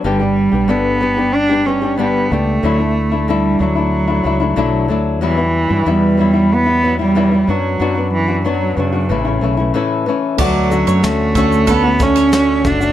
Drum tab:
CC |----------------|----------------|----------------|----------------|
SH |----------------|----------------|----------------|----------------|
SD |----------------|----------------|----------------|----------------|
BD |----------------|----------------|----------------|----------------|

CC |x---------------|
SH |--xxx-xxx-xxx-xx|
SD |----o------oo---|
BD |o-----o-o-o---o-|